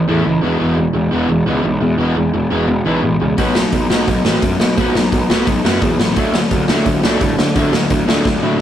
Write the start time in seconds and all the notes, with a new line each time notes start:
0.08 E2 A2 E3 A3
0.26 C#2 A2 E3
0.42 E1 E2 B2 E3 G#3 B3
0.60 E1 E2 B2 E3 G#3 B3
0.76 E2 B2 E3 G#3
0.93 E1 E2 B2 E3 G#3
1.12 E1 E2 B2 E3 G#3 B3
1.28 E1 E2 B2 E3 G#3
1.47 C#2 E2 B2 E3 G#3 B3
1.63 B1 E2 B2 E3 G#3
1.80 E2 B2 E3 G#3
1.99 E1 E2 B2 E3 G#3 B3
2.16 E1 E2 B2 E3 G#3
2.33 E1 E2 B2 E3 G#3
2.50 E1 E2 B2 E3 G#3 B3
2.68 E1 E2 B2 E3 G#3
2.85 B1 E2 B2 E3 G#3 B3
3.02 A1 E2 B2 E3 G#3
3.20 C#2 E2 B2 E3 G#3
3.37 B1 B2 F#3 B3, kick, open hi-hat
3.55 B2 F#3, snare
3.72 B1 B2 F#3, kick, open hi-hat
3.90 B1 B2 F#3 B3, snare
4.08 B1 B2 F#3, kick, open hi-hat
4.25 A1 B2 F#3 B3, snare
4.42 F#2 B2 F#3, kick, open hi-hat
4.60 B2 F#3, snare
4.77 B1 B2 F#3 B3, kick, open hi-hat
4.95 B1 B2 F#3, snare
5.12 B1 B2 F#3, kick, open hi-hat
5.29 B1 B2 F#3 B3, snare
5.47 B1 B2 F#3, kick, open hi-hat
5.64 F#2 B2 F#3 B3, snare
5.81 E2 B2 F#3, kick, open hi-hat
5.99 A1 B2 F#3, snare
6.16 D2 D3 F#3 A3 D4, kick, open hi-hat
6.34 D3 F#3 A3, snare
6.51 D2 D3 F#3 A3, kick, open hi-hat
6.68 D2 D3 F#3 A3 D4, snare
6.85 D2 D3 F#3 A3, kick, open hi-hat
7.03 B1 D3 F#3 A3 D4, snare
7.20 A2 D3 F#3 A3, kick, open hi-hat
7.38 D3 F#3 A3, snare
7.55 D2 D3 F#3 A3 D4, kick, open hi-hat
7.73 D2 D3 F#3 A3, snare
7.90 D2 D3 F#3 A3, kick, open hi-hat
8.07 D2 D3 F#3 A3 D4, snare
8.25 D2 D3 F#3 A3, kick, snare
8.42 A2 D3 F#3 A3 D4